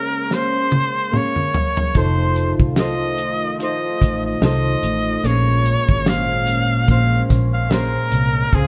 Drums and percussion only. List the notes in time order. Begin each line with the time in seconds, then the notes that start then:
0.31 snare
0.72 high tom
1.14 mid tom
1.36 mid tom
1.54 floor tom
1.77 floor tom
1.95 kick, closed hi-hat
2.36 closed hi-hat
2.60 kick
2.76 snare, closed hi-hat
3.18 closed hi-hat
3.60 closed hi-hat
4.01 kick, snare, closed hi-hat
4.42 snare, closed hi-hat
4.83 closed hi-hat
5.24 closed hi-hat
5.66 closed hi-hat
5.89 kick
6.06 snare, closed hi-hat
6.47 closed hi-hat
6.88 kick, closed hi-hat
7.30 kick, snare, closed hi-hat
7.71 snare, closed hi-hat
8.12 closed hi-hat
8.53 kick, closed hi-hat